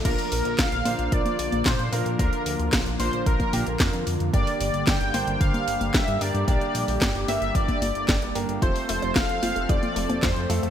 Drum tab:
CC |x---------------|----------------|----------------|----------------|
HH |xooxxxoxxxoxxxox|xxoxxxoxxxoxxxox|xooxxxoxxxoxxxox|xxooxxoxxxoxxxox|
CP |----x-------x---|----x-------x---|----x-------x---|----x-------x---|
SD |----o-------o---|----o-------o---|----o-------o---|----o-------o---|
CG |------o--o-o----|------o--oo-----|------o--o-o----|------o--oo-----|
BD |o---o---o---o---|o---o---oo--o---|o---o---o---o---|o---o---oo--o---|

CC |----------------|
HH |xooxxxoxxxoxxxox|
CP |----x-------x---|
SD |----o-------o---|
CG |------o--o-o----|
BD |o---o---o---o---|